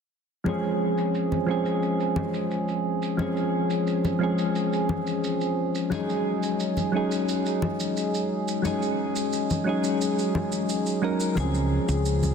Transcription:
0.44 F3 G#3 C4 C#4, high conga, shaker
0.49 G#4
0.64 shaker
0.98 shaker
1.15 shaker
1.32 high conga, shaker
1.46 F3 G#3 C4 C#4
1.51 G#4
1.66 shaker
1.83 shaker
2.00 shaker
2.16 high conga
2.34 shaker
2.51 shaker
2.68 shaker
3.02 shaker
3.17 F3 G#3 C4 C#4, high conga, shaker
3.22 G#4
3.37 shaker
3.70 shaker
3.87 shaker
4.05 high conga, shaker
4.19 F3 G#3 C4 C#4
4.23 G#4
4.38 shaker
4.56 shaker
4.73 shaker
4.89 high conga
5.07 shaker
5.24 shaker
5.41 shaker
5.75 shaker
5.90 F#3 G#3 C#4 D#4, high conga, shaker
5.95 G#4
6.09 shaker
6.43 shaker
6.60 shaker
6.77 high conga, shaker
6.92 F#3 G#3 C#4 D#4
6.96 G#4
7.12 shaker
7.29 shaker
7.46 shaker
7.62 high conga
7.80 shaker
7.97 shaker
8.14 shaker
8.48 shaker
8.62 F#3 G#3 C#4 D#4, high conga, shaker
8.67 G#4
8.82 shaker
9.16 shaker
9.33 shaker
9.50 high conga, shaker
9.64 F#3 G#3 C#4 D#4
9.69 G#4
9.84 shaker
10.02 shaker
10.19 shaker
10.35 high conga
10.52 shaker
10.69 shaker
10.86 shaker
11.02 F#3 G#3 C#4 D#4 A#4
11.20 shaker
11.35 C#2 F3 G#3 C4 C#4, high conga, shaker
11.40 G#4
11.55 shaker
11.89 C#2, shaker
12.06 shaker
12.23 high conga, shaker

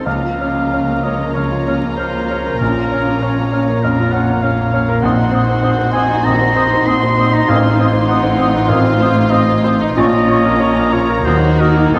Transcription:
0.05 C#2 C#3 F3 A#3 C#4 F4 F5 A#5 F6
0.25 F4
0.40 A#3 C#5 F6
0.58 A#3
0.72 A#3 C#5 F6
0.89 A#3
1.04 A#3 C#5 D#5 F6
1.21 A#4
1.34 C#2 A#3 C#5 F6
1.52 F4
1.67 A#3 C#5 F6
1.84 A#3
1.97 A#3 C5 C#5 F6
2.13 A#3
2.30 A#3 C#5 F6
2.46 A#4
2.59 A#1 A#2 C#4 A#4 F6
2.76 F4
2.91 C#4 C#5 F6
3.08 A#3
3.22 C#4 C#5 F6
3.39 A#3
3.53 C#4 C#5 F6
3.69 A#4
3.83 F2 C#4 A#4 F6
4.00 F4
4.12 C#4 C#5 F#5 F6
4.30 A#3
4.42 C#4 C#5 F5 F6
4.60 A#3
4.73 C#4 C#5 F6
4.89 A#4
5.02 A#1 A#2 D#3 C4 D#4 F#4 F#5 C6 D#6
5.17 D#4
5.30 C4 C5 D#6
5.49 C4
5.61 C4 C5 D#6
5.79 C4
5.93 C4 C5 G#5 D#6
6.10 D#4
6.23 A#1 D#3 C4 A#5 D#6
6.41 C4
6.54 C4 C5 D#6
6.73 C4
6.86 C4 C5 C6 D#6
7.03 C4
7.18 C4 C5 D#6
7.34 D#4 A#5
7.48 A1 A2 D#3 C4 F4 F5 D#6
7.64 D#4
7.77 C4 C5 D#6
7.93 C4
8.08 C4 C5 F#5 D#6
8.23 C4
8.38 C4 C5 D#6
8.54 D#4
8.68 A1 D#3 C4 F5 D#6
8.85 C4
9.00 C4 C5 D#6
9.16 C4
9.30 C4 C5 D#5 D#6
9.49 C4
9.63 C4 C5 D#6
9.81 D#4
9.96 A#1 A#2 F3 C#4 F4 D#5 A#5 C#6
10.12 F4
10.28 F4 C#5 C#6
10.45 A#3
10.60 F4 C#5 C#6
10.76 A#3
10.93 F4 C#5 C#6
11.10 A#4
11.25 D#2 F#3 D#4 F#4 C5 D#6
11.43 F#4
11.59 F#4 A#4 D#5 D#6
11.76 A#3
11.94 F1 F2 F3 D#4 F4 A4 C6 D#6

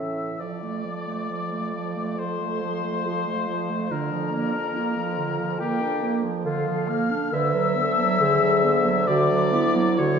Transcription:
Already playing: A2 E3 C#4 E5 E6
0.39 F2 F3 D5 D6
0.63 A3
0.85 F3
1.07 A3
1.30 F3
1.52 A3
1.74 F3
1.96 A3
2.18 F3 A4 C5 C6
2.40 A3
2.62 F3
2.84 A3
3.05 F3 F4
3.27 A3
3.48 F3
3.70 A3
3.90 F2 D3 D4 A#4 A#5
4.11 F3
4.31 A#3
4.53 D4
4.74 A#3 F4
4.95 F3
5.17 D3
5.39 F3
5.59 A#3 G4 A#4 G5
5.81 D4
6.03 A#3
6.23 F3
6.44 D3 F4 A4 F5
6.67 F3
6.88 A#3 F5 F6
7.10 D4
7.32 D2 D3 B4 E5 E6
7.54 F#3
7.76 B3 A4
7.98 F#3
8.20 D3 G#4
8.40 F#3
8.63 B3
8.85 F#3
9.07 D3 F#4 D5 D6
9.30 F#3
9.52 B3 E4
9.75 F#3
9.97 D3 F#4 C#5 C#6

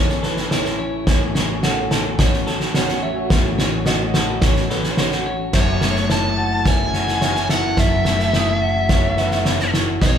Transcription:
Already playing: A1 A2 E3 A3 C#4 E4 A4 C#5
0.09 snare
0.23 A4 B4, snare
0.37 snare
0.51 E4 C#5, snare
0.65 snare
0.79 C#4
1.07 A1 A2 F#3 A3 C#5, kick, snare
1.35 C#4, snare
1.63 F#4 A4, snare
1.91 A4, snare
2.19 C#4 C#5, kick, snare
2.33 snare
2.47 A4, snare
2.60 snare
2.74 F#4 C#5, snare
2.89 snare
3.03 C#4 E5
3.30 A1 A2, kick, snare
3.58 C#4, snare
3.86 F#4 D#5, snare
4.14 A4, snare
4.42 C#4 C#5, kick, snare
4.56 snare
4.70 A4 B4, snare
4.84 snare
4.97 F#4 C#5, snare
5.12 snare
5.26 C#4
5.53 F#1 F#3 C#4 E4 A4 C#5 E5, kick, snare, crash
5.81 A3, snare
5.96 snare
6.10 E4 C#5 A5, snare
6.37 F#4
6.65 C#5 E5 G#5, kick, snare
6.94 F#4, snare
7.08 snare
7.21 C#5 E5, snare
7.35 snare
7.49 E4 E5 F#5, snare
7.77 F#1 F#3 E5, kick, snare
8.05 A3, snare
8.20 snare
8.33 E4 D#6, snare
8.61 F#4
8.89 C#5, kick, snare
9.17 F#4 B4, snare
9.31 snare
9.45 C#5, snare
9.60 snare
9.74 E4, snare
10.00 B1 B3 D#4 C#5 D#5, kick, snare

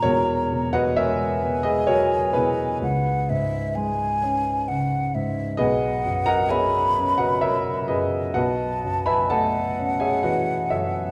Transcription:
Already playing: A#5
0.02 E1 E2 F#4 A#4 C#5
0.52 B2
0.73 F#4 B4 D#5 F#5
0.96 G#3 A#4 C#5 E5 G#5
1.44 B3
1.63 G#4 B4 D#5
1.87 F#3 F#4 A#4 C#5
2.33 B2 E4 G#4 B4
2.82 C#2 F#5
3.30 G#2 E5
3.75 G#3 G#5
4.23 C#4
4.68 C#3 F#5
5.15 G#2 E5
5.57 B1 G#4 B4 D#5 F#5
6.05 F#2
6.26 A#4 D#5 F#5 A#5
6.49 B3 G#4 C#5 E5 G#5 B5
6.97 C#4
7.18 F#4 B4 D#5 F#5
7.41 F#3 A#4 C#5 E5
7.88 F#2 G#4 B4 D#5
8.34 B1 F#4 B4 D#5 F#5 A5
8.84 F#2
9.06 B4 E5 G#5 B5
9.30 A3 A4 D#5 F#5 A5
9.79 C#4
10.00 G#4 C#5 E5 G#5
10.23 E3 F#4 B4 D#5 F#5
10.70 F#2 A4 C#5 E5

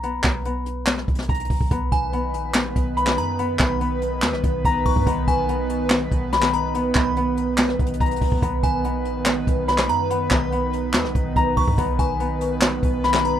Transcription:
Already playing: B1 A#5
0.03 B3, closed hi-hat
0.23 B1, kick, snare, clap
0.45 B3, closed hi-hat
0.66 closed hi-hat
0.86 snare, clap
0.98 cross-stick
1.08 B1, kick, closed hi-hat
1.15 snare, closed hi-hat
1.22 closed hi-hat
1.29 B1 A#5, kick, closed hi-hat
1.34 closed hi-hat
1.40 closed hi-hat
1.45 closed hi-hat
1.50 B1, kick, open hi-hat
1.61 B1, kick
1.71 B1 D#3 B3 B4, kick, closed hi-hat
1.92 B1 G#5, kick, closed hi-hat
2.13 B3, closed hi-hat
2.34 A#1, closed hi-hat
2.54 snare, clap
2.76 B1, kick, closed hi-hat
2.97 B5, closed hi-hat
3.07 snare, clap
3.18 F#2 A#5, closed hi-hat
3.39 B3, closed hi-hat
3.59 B1 B5, kick, snare, clap
3.81 B3, closed hi-hat
4.02 closed hi-hat
4.22 D#2, snare, clap
4.33 B1, cross-stick
4.44 B1, kick, closed hi-hat
4.65 B1 A#5, kick, closed hi-hat
4.86 B1 C#6, kick, open hi-hat
4.96 F#2, kick
5.06 B1 B3, kick, closed hi-hat
5.28 B1 G#5, kick, closed hi-hat
5.49 B3, closed hi-hat
5.70 closed hi-hat
5.90 snare, clap
6.12 B1, kick, closed hi-hat
6.33 B5, snare, closed hi-hat
6.42 snare, clap
6.53 A#5, closed hi-hat
6.75 B3, closed hi-hat
6.95 B1 B5, kick, snare, clap
7.17 B3, closed hi-hat
7.37 closed hi-hat
7.58 snare, clap
7.69 cross-stick
7.79 B1, kick, closed hi-hat
7.86 closed hi-hat
7.93 closed hi-hat
8.00 B1 A#5, kick, closed hi-hat
8.06 closed hi-hat
8.11 closed hi-hat
8.16 closed hi-hat
8.21 B1, kick, open hi-hat
8.32 B1, kick
8.42 B1 D#3 B3 B4, kick, closed hi-hat
8.63 B1 G#5, kick, closed hi-hat
8.84 B3, closed hi-hat
9.05 A#1, closed hi-hat
9.26 snare, clap
9.47 B1, kick, closed hi-hat
9.68 B5, snare, closed hi-hat
9.78 snare, clap
9.89 F#2 A#5, closed hi-hat
10.10 B3, closed hi-hat
10.30 B1 B5, kick, snare, clap
10.52 B3, closed hi-hat
10.73 closed hi-hat
10.93 D#2, snare, clap
11.05 B1, cross-stick
11.15 B1, kick, closed hi-hat
11.36 B1 A#5, kick, closed hi-hat
11.57 B1 C#6, kick, open hi-hat
11.68 F#2, kick
11.78 B1 B3 B4, kick, closed hi-hat
11.99 B1 G#5, kick, closed hi-hat
12.20 B3, closed hi-hat
12.41 closed hi-hat
12.61 snare, clap
12.83 B1, kick, closed hi-hat
13.04 B5, snare, closed hi-hat
13.14 snare, clap
13.25 A#5, closed hi-hat

